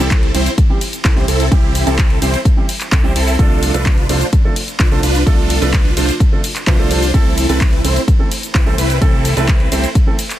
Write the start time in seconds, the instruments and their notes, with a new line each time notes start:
0.00 analog synth bass C2, supersaw synth C4 E4 A4
0.11 kick, clap, closed hi-hat, cabasa
0.23 closed hi-hat
0.34 analog synth bass C2, felt piano E3 G3 C4 G4, supersaw synth C4 E4 C5, open hi-hat, ride, cabasa
0.46 closed hi-hat, cabasa
0.58 kick, closed hi-hat, cabasa
0.69 felt piano E3 G3 C4 G4
0.81 open hi-hat, ride, cabasa
0.93 closed hi-hat, cabasa
1.05 analog synth bass C2, supersaw synth C4 E4 A4, kick, clap, closed hi-hat, cabasa
1.16 analog synth bass C2, felt piano E3 G3 C4 G4, supersaw synth C4 E4 C5
1.28 analog synth bass C2, supersaw synth C4 E4 A4, open hi-hat, ride, cabasa
1.40 closed hi-hat, cabasa
1.51 analog synth bass C2, felt piano E3 G3 C4 G4, supersaw synth G4, kick, closed hi-hat, cabasa
1.75 open hi-hat, ride, cabasa
1.86 analog synth bass C2, felt piano E3 G3 C4 G4, supersaw synth C4 E4 A4, closed hi-hat, cabasa
1.98 kick, clap, closed hi-hat, cabasa
2.10 closed hi-hat
2.21 analog synth bass C2, felt piano E3 G3 C4 G4, supersaw synth C4 E4 C5, open hi-hat, ride, cabasa
2.34 closed hi-hat, cabasa
2.45 kick, closed hi-hat, cabasa
2.56 felt piano E3 G3 C4 G4
2.69 open hi-hat, ride, cabasa
2.81 clap, closed hi-hat, cabasa
2.92 analog synth bass C2, supersaw synth C4 E4 A4, kick, clap, closed hi-hat, cabasa
3.03 analog synth bass C2, felt piano E3 G3 C4 G4, supersaw synth C4 E4 C5
3.16 analog synth bass C2, supersaw synth C4 E4 A4, open hi-hat, ride, cabasa
3.28 open hi-hat, cabasa
3.38 analog synth bass C2, felt piano C3 F3 A3 D4 A4, supersaw synth D4 F4 A4, kick, closed hi-hat, cabasa
3.63 open hi-hat, ride, cabasa
3.74 analog synth bass C2, felt piano C3 F3 A3 D4 A4, supersaw synth D4 F4 B4, closed hi-hat, cabasa
3.86 kick, clap, closed hi-hat, cabasa
3.98 closed hi-hat
4.09 analog synth bass C2, felt piano C3 F3 A3 D4 A4, supersaw synth D4 F4 C5, open hi-hat, ride, cabasa
4.21 closed hi-hat, cabasa
4.33 kick, closed hi-hat, cabasa
4.44 felt piano C3 F3 A3 D4 A4
4.56 open hi-hat, ride, cabasa
4.68 closed hi-hat, cabasa
4.80 analog synth bass C2, supersaw synth D4 F4 B4, kick, clap, closed hi-hat, cabasa
4.91 analog synth bass C2, felt piano C3 F3 A3 D4 A4, supersaw synth D4 F4 C5
5.03 analog synth bass C2, supersaw synth D4 F4 B4, open hi-hat, ride, cabasa
5.15 closed hi-hat, cabasa
5.26 analog synth bass C2, felt piano C3 F3 A3 D4 A4, supersaw synth D4 F4 A4, kick, closed hi-hat, cabasa
5.50 open hi-hat, ride, cabasa
5.61 analog synth bass C2, felt piano C3 F3 A3 D4 A4, supersaw synth D4 F4 B4, closed hi-hat, cabasa
5.73 kick, clap, closed hi-hat, cabasa
5.85 closed hi-hat
5.96 analog synth bass C2, felt piano C3 F3 A3 D4 A4, supersaw synth D4 F4 C5, open hi-hat, ride, cabasa
6.09 closed hi-hat, cabasa
6.20 kick, closed hi-hat, cabasa
6.32 felt piano C3 F3 A3 D4 A4
6.44 open hi-hat, ride, cabasa
6.56 clap, closed hi-hat, cabasa
6.67 analog synth bass C2, felt piano C3 F3 A3 D4 B4, supersaw synth D4 F4 C5, kick, clap, closed hi-hat, cabasa
6.78 felt piano C3 F3 A3 D4 A4
6.90 felt piano F3 A3 D4 A4, open hi-hat, ride, cabasa
7.03 open hi-hat, cabasa
7.13 analog synth bass C2, felt piano E3 A3 C4 A4, supersaw synth C4 E4 A4, kick, closed hi-hat, cabasa
7.38 open hi-hat, ride, cabasa
7.49 analog synth bass C2, felt piano E3 A3 C4 A4, supersaw synth C4 E4 B4, closed hi-hat, cabasa
7.61 kick, clap, closed hi-hat, cabasa
7.73 closed hi-hat
7.84 analog synth bass C2, felt piano E3 A3 C4 A4, supersaw synth C4 E4 C5, open hi-hat, ride, cabasa
7.96 closed hi-hat, cabasa
8.08 kick, closed hi-hat, cabasa
8.19 felt piano E3 A3 C4 A4
8.31 open hi-hat, ride, cabasa
8.43 closed hi-hat, cabasa
8.55 analog synth bass C2, supersaw synth C4 E4 B4, kick, clap, closed hi-hat, cabasa
8.66 analog synth bass C2, felt piano E3 A3 C4 A4, supersaw synth C4 E4 C5
8.78 analog synth bass C2, supersaw synth C4 E4 B4, open hi-hat, ride, cabasa
8.90 closed hi-hat, cabasa
9.01 analog synth bass C2, felt piano E3 A3 C4 A4, supersaw synth C4 E4 A4, kick, closed hi-hat, cabasa
9.25 open hi-hat, ride, cabasa
9.36 analog synth bass C2, felt piano E3 A3 C4 A4, supersaw synth C4 E4 B4, closed hi-hat, cabasa
9.48 kick, clap, closed hi-hat, cabasa
9.60 closed hi-hat
9.71 analog synth bass C2, felt piano E3 A3 C4 A4, supersaw synth C4 E4 C5, open hi-hat, ride, cabasa
9.84 closed hi-hat, cabasa
9.95 kick, closed hi-hat, cabasa
10.06 felt piano E3 A3 C4 A4
10.19 open hi-hat, ride, cabasa
10.30 clap, closed hi-hat, cabasa